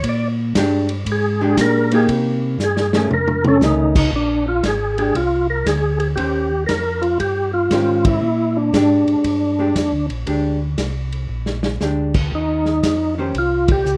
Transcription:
0.04 A#2, kick, ride
0.09 D5
0.55 G2 G#3 D4 G4, kick, snare, hi-hat pedal, ride
0.89 ride
1.06 G#2, kick, ride
1.12 G#4
1.41 G#3 D4 G4
1.57 A#2 A#4, kick, snare, hi-hat pedal, ride
1.91 A#3 D#4 G4 G#4, ride
2.08 C3, kick, ride
2.59 G2, snare, hi-hat pedal
2.64 G#4
2.77 snare
2.93 D#3 A3 C#4, snare
3.11 F2 A#4, mid tom
3.28 mid tom
3.44 C#4, mid tom
3.49 A4
3.61 C#2 D#3 A3 C#4 D#4, snare, hi-hat pedal
3.95 kick, crash
4.12 A#1 D4, kick
4.48 F4
4.63 G#1 G#4, kick, snare, hi-hat pedal, ride
4.98 G#3 D4 G4 G#4, ride
5.15 C2 F4, kick, ride
5.50 A#4
5.66 D2 G#4, kick, snare, hi-hat pedal, ride
6.00 G#4, ride
6.16 D#2 D#3 C#4 G4 C5, kick, ride
6.66 F2 A#4, kick, snare, hi-hat pedal, ride
7.02 F4, ride
7.20 G2 G4, kick, ride
7.53 F4
7.71 G#2 D#3 C#4 G4 C5, kick, snare, hi-hat pedal, ride
8.05 E4, kick, ride
8.21 A#2
8.57 D4
8.73 G#2 G#3 D4 G4, kick, snare, hi-hat pedal, ride
9.07 G#2, ride
9.24 G2, kick, ride
9.59 G#3 D4 G4
9.75 F2, kick, snare, hi-hat pedal, ride
9.92 D2
10.10 A#1, ride
10.26 D2 G#3 D4 G4, kick, ride
10.78 C2, kick, snare, hi-hat pedal, ride
11.12 ride
11.29 A#1
11.46 snare
11.63 snare
11.81 D2 G#3 D4 G4, snare, hi-hat pedal
12.14 kick, crash
12.32 D#2 D#4, kick
12.65 snare
12.83 F2, kick, snare, hi-hat pedal, ride
13.18 D#3 C#4 G4 C5
13.35 C2 F4, kick, ride
13.68 G4, kick, ride
13.85 C#2, hi-hat pedal

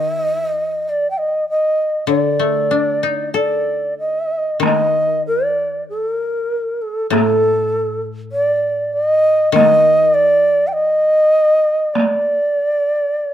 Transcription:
Already playing: D#3 D#5
0.89 D5
1.11 G5
1.18 D#5
1.50 D#5
2.07 D3 D5
2.39 A3
2.71 D4
3.03 D#4
3.34 A4 D5
3.99 D#5
4.60 D#3, taiko rim, taiko high
4.64 D#5
5.27 D5
5.89 A4
6.10 A#4
6.82 A4
7.10 A2 A4, taiko rim, taiko high
8.32 D5
8.93 D#5
9.52 D#3 D#5, taiko rim, taiko high
10.14 D5
10.67 G5
10.73 D#5
11.94 D5, taiko rim, taiko high

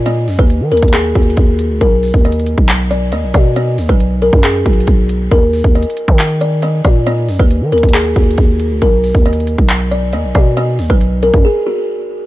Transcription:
Already playing: A#2
0.06 D#5, closed hi-hat
0.28 F#2, open hi-hat
0.39 D#2 B4, kick
0.50 closed hi-hat
0.61 D#3
0.72 D#2 A#4, closed hi-hat
0.77 closed hi-hat
0.83 D#2, kick, closed hi-hat
0.88 closed hi-hat
0.94 G#4, clap, closed hi-hat
1.15 D#2 F#4, kick, closed hi-hat
1.23 closed hi-hat
1.30 closed hi-hat
1.37 D#2, kick, closed hi-hat
1.59 closed hi-hat
1.70 D2
1.81 B1 A#4, kick, closed hi-hat
2.03 open hi-hat
2.14 D#2, kick
2.25 D#5, closed hi-hat
2.32 closed hi-hat
2.40 closed hi-hat
2.47 closed hi-hat
2.58 B1, kick
2.69 clap, closed hi-hat
2.91 D5, closed hi-hat
3.12 D#2 D#5, closed hi-hat
3.23 B1
3.34 B2 D5, kick, closed hi-hat
3.56 D#5, closed hi-hat
3.78 D#2, open hi-hat
3.89 B1 B4, kick
4.00 closed hi-hat
4.22 A#4, closed hi-hat
4.33 F#2, kick, closed hi-hat
4.44 G#4, clap, closed hi-hat
4.66 B1 F#4, kick, closed hi-hat
4.73 closed hi-hat
4.80 closed hi-hat
4.87 B1, kick, closed hi-hat
5.09 closed hi-hat
5.31 D#2 A#4, kick, closed hi-hat
5.53 open hi-hat
5.64 D#2, kick
5.75 D#5, closed hi-hat
5.83 closed hi-hat
5.90 closed hi-hat
5.97 closed hi-hat
6.08 D#3, kick
6.19 clap, closed hi-hat
6.41 D5, closed hi-hat
6.62 D#5, closed hi-hat
6.84 A#2 D5, kick, closed hi-hat
7.07 D#5, closed hi-hat
7.29 F#2, open hi-hat
7.39 D#2 B4, kick
7.51 closed hi-hat
7.61 D#3
7.72 D#2 A#4, closed hi-hat
7.78 closed hi-hat
7.83 D#2, kick, closed hi-hat
7.89 closed hi-hat
7.94 G#4, clap, closed hi-hat
8.16 D#2 F#4, kick, closed hi-hat
8.23 closed hi-hat
8.31 closed hi-hat
8.38 D#2, kick, closed hi-hat
8.60 closed hi-hat
8.71 D2
8.82 B1 A#4, kick, closed hi-hat
9.04 open hi-hat
9.15 D#2, kick
9.26 D#5, closed hi-hat
9.33 closed hi-hat
9.40 closed hi-hat
9.47 closed hi-hat
9.58 B1, kick
9.69 clap, closed hi-hat
9.91 D5, closed hi-hat
10.13 D#2 D#5, closed hi-hat
10.24 B1
10.35 B2 D5, kick, closed hi-hat
10.57 D#5, closed hi-hat
10.79 D#2, open hi-hat
10.90 B1 B4, kick
11.01 closed hi-hat
11.23 A#4, closed hi-hat
11.34 F#2, kick, closed hi-hat
11.45 G#4
11.67 F#4

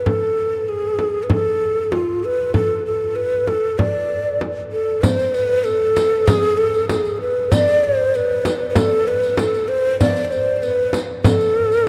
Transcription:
0.06 A4, frame drum
0.69 G#4
0.99 frame drum
1.23 B4
1.30 A4, frame drum
1.92 F4, frame drum
2.24 B4
2.54 A4, frame drum
2.86 A4
3.16 B4
3.47 A4, frame drum
3.78 D5, frame drum
4.41 frame drum
4.72 A4
5.02 C5, riq, frame drum
5.19 riq
5.34 B4, riq
5.64 A4, riq
5.96 riq, frame drum
6.26 G#4, riq, frame drum
6.43 riq
6.57 A4
6.74 riq
6.89 G#4, riq, frame drum
7.05 riq
7.21 B4
7.52 D5, riq, frame drum
7.68 riq
7.84 C5
8.14 B4, riq
8.45 riq, frame drum
8.70 B4
8.75 A4, riq, frame drum
9.08 B4
9.23 riq
9.37 A4, riq, frame drum
9.54 riq
9.68 C5
10.00 D5, riq, frame drum
10.16 riq
10.25 D5
10.31 C5, riq
10.56 C5
10.63 B4, riq
10.93 riq, frame drum
11.24 A4, riq, frame drum
11.41 riq
11.72 riq

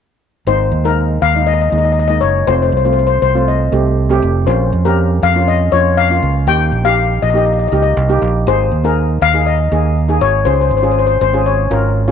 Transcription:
0.47 G#1 G#3 A#3 D#4 C5
0.72 D#2
0.84 G#3 A#3 D#4 A#4
1.22 D#2 F5
1.35 G#3 A#3 D#4
1.47 D#5
1.54 D#5
1.61 D#5
1.70 D#2 G#3 A#3 D#4 D#5
1.78 D#5
1.85 D#5
1.92 D#5
2.00 D#5
2.08 G#3 A#3 D#4 D#5
2.21 F#1 C#5
2.47 F1 A3 C4 F4 C5
2.55 C5
2.62 C5
2.70 C2 C5
2.77 C5
2.84 A3 C4 F4 C5
2.93 C5
2.99 C5
3.07 C5
3.22 C2 C5
3.35 A3 C4 F4
3.48 D#5
3.72 C2 A3 C4 G4
4.09 A3 C4 G4
4.22 F1
4.46 A#1 A#3 C#4 F4 C5
4.72 F2
4.85 A#3 C#4 G4 A#4
5.22 F2 F5
5.35 A#3 C#4 F4
5.48 D#5
5.72 F2 A#3 C#4 F4 C#5
5.97 F5
6.10 A#3 C#4 F4
6.22 C#2
6.47 D#2 A#3 D#4 G4 G5
6.72 A#1
6.84 A#3 D#4 G4 F5
7.22 A#1 D#5
7.30 A#3 D#5
7.34 D#4 G4 D#5
7.45 D#5
7.53 D#5
7.59 D#5
7.68 D#5
7.72 C#2 A#3 D#4 G4 D#5
7.82 D#5
7.97 C2
8.09 A#3 D#4 G4
8.22 A#1
8.47 G#1 A#3 D#4 G#4 C5
8.72 D#2
8.84 A#3 D#4 G#4 A#4
9.22 D#2 F5
9.33 A#3 D#4 G#4
9.46 D#5
9.72 D#2 A#3 D#4 G#4
10.08 A#3 D#4 G#4
10.21 G#1 C#5
10.45 C#2 C#4 F4 G#4 C5
10.54 C5
10.61 C5
10.69 G#1 C5
10.77 C5
10.82 C#4 F4 G#4 C5
10.91 C5
10.99 C5
11.07 C5
11.21 G#1 C5
11.33 C#4 F4 G#4
11.46 C#5
11.70 G#1 C#4 F4 A#4
12.08 C#4 F4

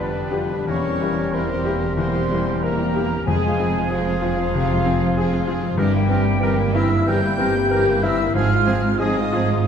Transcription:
Already playing: F1 F2 D3 F3 G3 B3 D4 F4 G4 B4 D5
0.11 G3 D4
0.30 F3 B3 F4 G4
0.49 G3 D4
0.66 E1 E2 E3 A#3 C#4 E4 A#4 C#5 C#6
0.84 G3 C4 G4
1.01 E3 G3 A#3 E4
1.17 G3 C4 G4
1.32 E3 A#3 C4 E4 A#4 C5 C6
1.49 G3 C4 G4
1.65 E3 A#3 E4 G4
1.82 G3 C4 G4
1.96 E2 E3 C4 E4 C5 C6
2.01 A#3
2.14 G3 G4
2.18 C4
2.31 E3 G3 E4
2.35 A#3
2.47 G3 C4 G4
2.62 E3 A#3 E4 A#4 A#5
2.66 A#3
2.78 G3 G4
2.83 C4
2.94 E3 A#3 E4 G4
3.11 G3 C4 G4
3.25 F1 F2 F3 G#3 G#4 G#5
3.30 C4
3.43 G#3 F4
3.57 F3 C4 G#4
3.75 G#3 F4
3.90 F3 C4 F4 G#4 F5
4.07 G#3 F4
4.22 F3 C4 F4 G#4
4.39 G#3 F4
4.54 C3 F3 C4 G#4
4.69 G#3 F4
4.86 F3 C4 G#4
5.02 G#3 F4
5.17 F3 C4 G#4
5.33 G#3 F4
5.47 F3 C4 F4 G#4
5.63 G#3 F4
5.77 G1 G2 E3 G3 C4 G4 A#4 G5
5.94 A#3 E4
6.09 E3 G3 C4 G4 A#4
6.25 A#3 E4
6.40 E3 G3 C4 G4 A#4
6.58 A#3 E4
6.74 E3 G3 C4 E4 G4 A#4 E5 E6
6.78 E4
6.91 A#3 E4
7.06 E3 G3 C4 G4 A#4 G5 G6
7.23 A#3 E4
7.38 E3 G3 C4 G4 A#4
7.56 A#3 E4
7.71 E3 G3 C4 G4 A#4
7.89 A#3 E4
8.03 E3 G3 E4 G4 A#4 E5 E6
8.07 C4
8.20 A#3 E4
8.34 G#1 G#2 F3 F4 G#4 F5 F6
8.39 C4
8.51 G#3 F4
8.67 F3 C4 G#4
8.73 C4
8.82 G#3 F4
8.88 F4
8.99 F3 G#4 D#5 D#6
9.03 C4 D#4
9.16 G#3 F4
9.33 F3 C4 F4 G#4
9.51 G#3 F4

